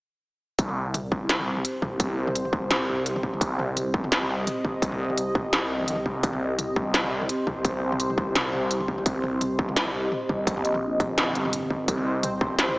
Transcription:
0.59 detuned saw bass C2, ambient pad C4 G4 C5, kick, closed hi-hat
0.69 mid tom
0.94 closed hi-hat, mid tom
1.12 kick, mid tom
1.29 snare, closed hi-hat
1.39 mid tom
1.57 mid tom
1.65 closed hi-hat
1.82 detuned saw bass C2, kick, mid tom
2.00 kick, closed hi-hat, mid tom
2.27 mid tom
2.35 closed hi-hat
2.45 mid tom
2.53 kick
2.71 snare, closed hi-hat, mid tom
2.88 detuned saw bass C2, mid tom
3.06 closed hi-hat
3.16 mid tom
3.23 kick
3.33 mid tom
3.41 detuned saw bass C2, ambient pad D#5, kick, closed hi-hat
3.59 mid tom
3.77 closed hi-hat, mid tom
3.94 kick
4.04 mid tom
4.12 snare, closed hi-hat
4.22 mid tom
4.47 closed hi-hat, mid tom
4.65 kick, mid tom
4.82 detuned saw bass C2, kick, closed hi-hat
4.92 mid tom
5.10 mid tom
5.17 closed hi-hat
5.35 kick, mid tom
5.53 detuned saw bass C2, snare, closed hi-hat, mid tom
5.80 mid tom
5.82 mid tom
5.84 mid tom
5.86 closed hi-hat, mid tom
5.88 mid tom
5.90 mid tom
5.93 mid tom
5.95 mid tom
5.98 mid tom
6.06 detuned saw bass C2, kick
6.23 detuned saw bass C2, ambient pad C5, kick, closed hi-hat
6.33 mid tom
6.59 closed hi-hat, mid tom
6.76 kick, mid tom
6.94 snare, closed hi-hat
7.04 mid tom
7.21 mid tom
7.29 closed hi-hat
7.47 detuned saw bass C2, kick, mid tom
7.65 kick, closed hi-hat, mid tom
7.92 mid tom
8.00 closed hi-hat
8.10 mid tom
8.18 kick
8.35 snare, closed hi-hat, mid tom
8.53 detuned saw bass C2, mid tom
8.71 closed hi-hat
8.80 mid tom
8.88 kick
8.98 mid tom
9.06 detuned saw bass C2, ambient pad D#5, kick, closed hi-hat
9.24 mid tom
9.41 closed hi-hat, mid tom
9.59 kick
9.69 mid tom
9.76 snare, closed hi-hat
9.86 mid tom
10.12 mid tom
10.29 detuned saw bass C2, kick, mid tom
10.47 kick, closed hi-hat
10.57 mid tom
10.65 detuned saw bass A#1, closed hi-hat
10.75 mid tom
11.00 kick, closed hi-hat, mid tom
11.18 snare, closed hi-hat, mid tom
11.21 mid tom
11.24 mid tom
11.27 mid tom
11.30 mid tom
11.33 detuned saw bass G1, closed hi-hat, mid tom
11.45 mid tom
11.53 closed hi-hat
11.63 mid tom
11.70 kick
11.88 detuned saw bass C2, synth texture C4 C5, ambient pad C5, kick, closed hi-hat
11.98 mid tom
12.23 closed hi-hat, mid tom
12.41 kick, mid tom
12.59 snare, closed hi-hat
12.68 mid tom

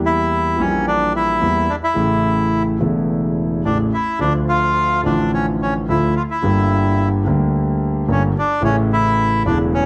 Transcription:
Already playing: grand piano E2 E3 G3 A#3 G4
0.05 bandoneon E4
0.56 grand piano A#1 A#2 E3 G3 A#3
0.61 bandoneon C#4, grand piano G4
0.87 bandoneon D4
1.16 bandoneon E4
1.42 grand piano E2 E3 G3 A#3 G4
1.69 bandoneon D4
1.83 bandoneon E4
1.94 grand piano A1 A2 C#3 E3 A3
1.98 grand piano E4
2.79 grand piano E1 E2 C#3 E3 A3
2.83 grand piano E4
3.65 grand piano A1 A2 C#3 E3 A3 E4, bandoneon D4
3.94 bandoneon E4
4.20 grand piano D2 D3 F3 A3 F4, bandoneon D4
4.49 bandoneon F4
5.04 grand piano A1 A2 D3 F3 A3, bandoneon D4
5.08 grand piano F4
5.34 bandoneon C#4
5.62 bandoneon C#4
5.89 grand piano D2 D3 F3 A3 F4, bandoneon E4
6.16 bandoneon F4
6.30 bandoneon E4
6.42 grand piano G1 G2 D3 G3 A#3 G4
7.26 grand piano D2 D3 G3 A#3 G4
8.08 grand piano G1 G2 D3 G3 A#3 G4, bandoneon C#4
8.39 bandoneon D4
8.60 grand piano A1 A2 C#3 E3 A3
8.64 bandoneon C#4, grand piano E4
8.93 bandoneon E4
9.44 grand piano E1 E2 C#3 E3 A3 E4, bandoneon D4
9.74 bandoneon C#4

